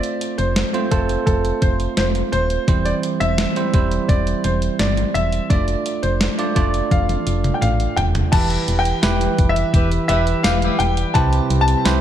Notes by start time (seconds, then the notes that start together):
Already playing: A3 C4 F4 C5 D5
0.03 closed hi-hat
0.21 closed hi-hat
0.38 F1 C5, closed hi-hat
0.56 snare, closed hi-hat
0.73 A3 C4 F4 C5, closed hi-hat
0.91 F1 A3 C4 F4 A4 C5, kick, closed hi-hat
1.09 closed hi-hat
1.26 F1 A4, kick, closed hi-hat
1.45 closed hi-hat
1.62 F1 C5, kick, closed hi-hat
1.80 closed hi-hat
1.97 F1 C5, snare, closed hi-hat
2.15 closed hi-hat
2.32 D#1 C5, closed hi-hat
2.50 closed hi-hat
2.67 E1 E3 G3 C4 E4 C5, kick, closed hi-hat
2.85 D5, closed hi-hat
3.03 closed hi-hat
3.20 E1 E5, closed hi-hat
3.38 snare, closed hi-hat
3.56 G3 C4 E4 C5, closed hi-hat
3.73 E1 G3 C4 E4 C5, kick, closed hi-hat
3.91 closed hi-hat
4.08 E1 D5, kick, closed hi-hat
4.27 closed hi-hat
4.44 E1 C5, closed hi-hat
4.62 closed hi-hat
4.79 G1 D5, snare, closed hi-hat
4.97 closed hi-hat
5.14 E1 E5, closed hi-hat
5.32 closed hi-hat
5.50 F1 A3 D4 F4 D5, kick, closed hi-hat
5.68 closed hi-hat
5.86 closed hi-hat
6.03 F1 C5, closed hi-hat
6.21 snare, closed hi-hat
6.38 A3 D4 F4 D5, closed hi-hat
6.55 F1 A3 D4 F4 D5, kick, closed hi-hat
6.74 closed hi-hat
6.91 F1 F5, kick, closed hi-hat, high tom
7.09 closed hi-hat, high tom
7.27 F1, closed hi-hat
7.44 closed hi-hat, mid tom
7.54 G5
7.61 A1 F5, closed hi-hat, mid tom
7.80 closed hi-hat
7.96 D#1 G5, closed hi-hat, floor tom
8.15 closed hi-hat, floor tom
8.32 E1 E3 G3 E4 G4 B4 A5, kick, closed hi-hat, crash
8.50 closed hi-hat
8.68 E1, closed hi-hat
8.79 G5
8.85 closed hi-hat
9.02 E1 E4 G4 B4, snare, closed hi-hat, tambourine
9.21 closed hi-hat
9.38 F1, kick, closed hi-hat
9.49 E5
9.56 closed hi-hat
9.74 E1 E4 G4 B4, kick, closed hi-hat
9.92 closed hi-hat
10.08 E1 E4 G4 B4 E5, closed hi-hat
10.27 closed hi-hat
10.43 E1 E4 G4 B4 F5, snare, closed hi-hat, tambourine
10.62 E4 G4 B4, closed hi-hat
10.79 E1 G5, closed hi-hat
10.97 closed hi-hat
11.14 C2 C3 C4 E4 G4 B4 C5 A5, kick, closed hi-hat
11.33 closed hi-hat
11.50 C2, closed hi-hat
11.61 A5
11.68 closed hi-hat
11.85 C2 C4 E4 G4 B4 C5, snare, closed hi-hat, tambourine